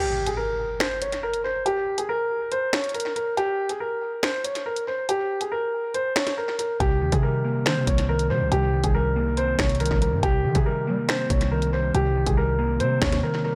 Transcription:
Already playing: G4, impact
0.26 G#4, closed hi-hat
0.37 A#4
0.80 C5, finger snap, snare, closed hi-hat
1.02 C#5, closed hi-hat
1.12 closed hi-hat
1.23 A#4
1.34 closed hi-hat
1.44 C5
1.66 G4, closed hi-hat
1.98 G#4, closed hi-hat
2.09 A#4
2.52 C5, closed hi-hat
2.73 C#5, finger snap, snare, closed hi-hat
2.84 closed hi-hat
2.89 closed hi-hat
2.94 A#4, closed hi-hat
3.00 closed hi-hat
3.16 A#4, closed hi-hat
3.37 G4, closed hi-hat
3.69 G#4, closed hi-hat
3.80 A#4
4.23 C5, finger snap, snare, closed hi-hat
4.44 C#5, closed hi-hat
4.55 closed hi-hat
4.66 A#4
4.76 closed hi-hat
4.87 C5
5.09 G4, closed hi-hat
5.41 G#4, closed hi-hat
5.52 A#4
5.94 C5, closed hi-hat
6.16 C#5, finger snap, snare, closed hi-hat
6.27 snare, closed hi-hat
6.37 A#4
6.59 A#4, closed hi-hat
6.80 C2 C3 G4, kick, closed hi-hat
7.01 D#2 D#3
7.12 C3 G#4, kick, closed hi-hat
7.23 G3 A#4
7.44 A#3
7.66 D#3 C4 C5, finger snap, snare, closed hi-hat
7.77 C3
7.87 C2 C3 C#5, kick, closed hi-hat
7.98 closed hi-hat
8.09 D#3 A#4
8.19 closed hi-hat
8.30 C3 G3 C5
8.41 C2
8.52 C2 C3 G4, closed hi-hat
8.73 D#3
8.84 C2 G#4, kick, closed hi-hat
8.95 G3 A#4
9.16 A#3
9.37 C4 C5, closed hi-hat
9.59 C2 C3 C#5, finger snap, kick, snare, closed hi-hat
9.69 closed hi-hat
9.75 closed hi-hat
9.80 D#3 A#4, closed hi-hat
9.86 closed hi-hat
9.91 C2, kick
10.01 G3 A#4, closed hi-hat
10.12 G2
10.23 C2 C3 G4, kick, closed hi-hat
10.44 D#3
10.55 C3 G#4, kick, closed hi-hat
10.66 G3 A#4
10.87 G3 A#3
11.09 C4 C5, finger snap, snare, closed hi-hat
11.30 C2 C3 C#5, kick, closed hi-hat
11.41 closed hi-hat
11.51 D#3 A#4
11.62 closed hi-hat
11.73 G3 C5
11.94 C2 C3 G4, closed hi-hat
12.16 D#3
12.26 C2 G#4, kick, closed hi-hat
12.37 G3 A#4
12.59 A#3
12.80 C3 C4 C5, closed hi-hat
13.02 D#2 C3 C#5, finger snap, kick, snare, closed hi-hat
13.12 snare, closed hi-hat
13.23 D#3 A#4
13.44 G3 A#4

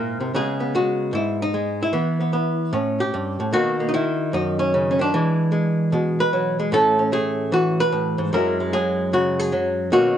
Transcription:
Already playing: G#2 A#2 C4 E4 A#4
0.20 C3
0.34 C#3 G#3 B3 G#4
0.60 B3
0.75 G#3 F#4
1.13 G#2 E4
1.42 D#4
1.54 G#3
1.83 E4
1.93 E3 B3
2.21 B3
2.33 B3
2.73 A2 C#4
3.00 G4
3.14 G2
3.40 A2
3.53 B2 D#3 A#3 F#4
3.80 A#3
3.89 D#4
3.94 D#3 E4
4.33 F#2 D#4
4.59 C#4
4.74 C#3
4.91 C#4
4.99 D#3 D4
5.14 E3 G#3
5.52 G#3
5.92 B2 G#3
6.20 B4
6.33 F#3
6.60 G#3
6.72 A2 A3 C#4 E4 A4
6.99 C#4
7.12 A3 G#4
7.52 E3 F#4
7.80 B4
7.92 A2
8.18 G#2
8.33 F#2 F#3 G#3 E4 A#4
8.60 G#3
8.73 F#3 G#4
9.13 C#3 F#4
9.40 G#4
9.52 F#3
9.92 B2 D#3 A#3 C#4 F#4

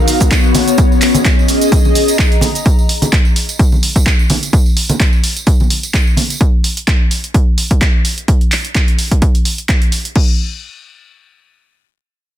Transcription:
Already playing: B3 F#4
0.08 open hi-hat, shaker
0.14 C#5
0.20 kick, closed hi-hat, tambourine, shaker
0.31 kick, clap, closed hi-hat, tambourine, shaker
0.44 tambourine
0.55 open hi-hat, high conga, shaker
0.67 closed hi-hat, tambourine, shaker
0.78 C#4, kick, closed hi-hat, tambourine, shaker
0.92 tambourine
1.01 clap, open hi-hat, shaker
1.11 G#4 D#5, closed hi-hat, high conga
1.15 tambourine, shaker
1.25 kick, clap, closed hi-hat, tambourine, shaker
1.39 tambourine
1.48 open hi-hat, shaker
1.61 closed hi-hat, tambourine, shaker
1.72 kick, closed hi-hat, tambourine, shaker
1.85 tambourine, high conga
1.95 open hi-hat, shaker
2.02 A#5
2.08 closed hi-hat, tambourine, shaker
2.19 kick, clap, closed hi-hat, shaker
2.32 closed hi-hat, tambourine
2.41 open hi-hat, high conga, shaker
2.55 closed hi-hat, tambourine, shaker
2.66 kick, closed hi-hat, tambourine
2.79 tambourine
2.89 open hi-hat
3.02 closed hi-hat, tambourine, high conga
3.13 kick, clap, closed hi-hat
3.25 tambourine
3.36 open hi-hat
3.49 closed hi-hat, tambourine
3.59 kick, closed hi-hat, tambourine
3.72 tambourine, high conga
3.83 open hi-hat
3.96 kick, closed hi-hat, tambourine
4.06 kick, clap, closed hi-hat, tambourine
4.19 tambourine
4.30 open hi-hat, high conga
4.43 closed hi-hat, tambourine
4.53 kick, closed hi-hat, tambourine
4.66 tambourine
4.77 open hi-hat
4.89 closed hi-hat, tambourine, high conga
5.00 kick, clap, closed hi-hat
5.13 tambourine
5.24 open hi-hat
5.36 closed hi-hat, tambourine
5.47 kick, closed hi-hat, tambourine
5.60 tambourine, high conga
5.70 open hi-hat
5.83 closed hi-hat, tambourine
5.94 kick, clap, closed hi-hat
6.07 tambourine
6.17 open hi-hat, high conga
6.30 closed hi-hat, tambourine
6.41 kick, closed hi-hat
6.64 open hi-hat
6.77 closed hi-hat
6.88 kick, clap, closed hi-hat
7.11 open hi-hat
7.24 closed hi-hat
7.34 kick, closed hi-hat
7.58 open hi-hat
7.71 kick, closed hi-hat
7.81 kick, clap, closed hi-hat
8.05 open hi-hat
8.18 closed hi-hat
8.28 kick, closed hi-hat
8.41 closed hi-hat
8.52 clap, open hi-hat
8.65 closed hi-hat
8.75 kick, clap, closed hi-hat
8.88 closed hi-hat
8.99 open hi-hat
9.11 kick, closed hi-hat
9.22 kick, closed hi-hat
9.35 closed hi-hat
9.45 open hi-hat
9.58 closed hi-hat
9.69 kick, clap, closed hi-hat
9.82 closed hi-hat
9.92 open hi-hat
10.05 closed hi-hat
10.16 kick, crash

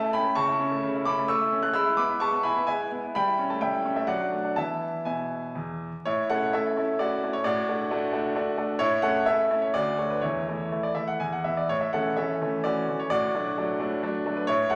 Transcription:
Already playing: A3 E5 A5
0.02 E4
0.13 C#4 G5 B5
0.25 A3
0.35 C#3 A5 C#6
0.48 E4
0.60 C#4
0.71 A3
0.83 C#3
0.95 E4
1.05 C#4 B5 D6
1.18 A3
1.28 A3 C#6 E6
1.41 E4
1.53 C#4
1.63 A3 F#6
1.74 G#3 B5 E6
1.86 E4
1.97 B3 B5 D6
2.09 E4
2.20 G#3 A5 C#6
2.32 B3
2.43 E4 G#5 B5
2.56 B3
2.67 G#3 E5 G#5
2.80 E4
2.92 B3
3.04 E4
3.15 G3 G5 B5
3.27 E4
3.39 C#4
3.50 A3 A5
3.61 G3 E5 G5
3.74 E4
3.85 C#4
3.96 A3 E5
4.07 F#3 D5 F#5
4.20 D4
4.32 A3
4.44 D4
4.56 E3 B3 E4 E5 A5
5.05 B2 E5 G#5
5.55 E2
6.05 A2 E4 C#5
6.30 A3 C#4 E4 A4 F#5
6.53 A3 C#4 E4 A4 E5
6.77 A3 C#4 E4
6.99 A3 C#4 E4 F#4 D5
7.24 A3 C#4 E4
7.33 C#5
7.44 A2 F#4 D5
7.69 A3 D4 F#4
7.91 A3 D4 F#4
8.13 A3 D4 F#4
8.36 A3 D4 F#4
8.57 A3 D4 F#4
8.79 A2 E4 C#5
9.02 A3 C#4 E4 A4 F#5
9.26 A3 C#4 E4 A4 E5
9.51 A3 C#4 E4
9.62 C#5
9.74 D2 F#4 D5
9.97 A3 D4 F#4 C#5
10.10 B4
10.21 E2 E4 C#5
10.48 E3 A3 E4
10.72 E3 A3 E4
10.83 D5
10.95 E3 A3 E4 E5
11.08 F#5
11.20 E2 G#5
11.33 F#5
11.44 E3 B3 E4 E5
11.57 D5
11.69 A2 C#5
11.81 E5
11.93 E3 A3 C#4 A4 F#5
12.17 E3 A3 C#4 A4 E5
12.41 E3 A3 C#4
12.64 E3 A3 C#4 F#4 D5
12.88 E3 A3 C#4
13.00 C#5
13.10 A2 F#4 D5
13.34 F#3 A3 D4
13.58 F#3 A3 D4
13.79 F#3 A3 D4
14.03 F#3 A3 D4
14.26 F#3 A3 D4
14.37 B4
14.47 A2 E4 C#5
14.70 A3 E4 A4 F#5

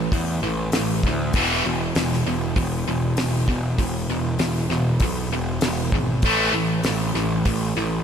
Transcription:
Already playing: E3
0.12 E2 A2 E3, kick, open hi-hat
0.42 A1 A2 E3
0.72 A1 A2 E3, snare, open hi-hat
1.03 D2 A2 E3, kick
1.33 E1 E2 B2 E3, kick, open hi-hat
1.65 E1 E2 B2
1.95 E1 E2 B2, snare, open hi-hat
2.13 snare
2.26 E1 E2 B2
2.56 E1 E2 B2, kick, open hi-hat
2.87 E1 E2 B2
3.17 E1 E2 B2, snare, open hi-hat
3.48 E1 E2 B2, kick
3.78 E1 E2 B2, kick, open hi-hat
4.09 E1 E2 B2
4.38 E1 E2 B2, snare, open hi-hat
4.69 E1 E2 B2, snare
5.00 B1 E2 B2, kick, open hi-hat
5.31 E1 E2 B2
5.61 E1 E2 B2, snare, open hi-hat
5.92 G#1 E2 B2, kick
6.22 A1 A2 E3 A3, kick, open hi-hat
6.53 A1 A2 E3
6.83 A1 A2 E3, snare, open hi-hat
7.14 A1 A2 E3, snare
7.45 A1 A2 E3, kick, open hi-hat
7.76 A1 A2 E3

